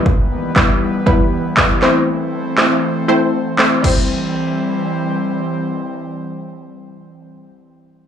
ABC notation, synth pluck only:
X:1
M:4/4
L:1/8
Q:1/4=119
K:C
V:1 name="Synth pluck"
[G,B,EB] z [G,B,EB] z [G,B,EB] z [G,B,EB] [A,CEc]- | [A,CEc] z [A,CEc] z [A,CEc] z [A,CEc] [G,CEc]- | [G,CEc]8- | [G,CEc]8 |]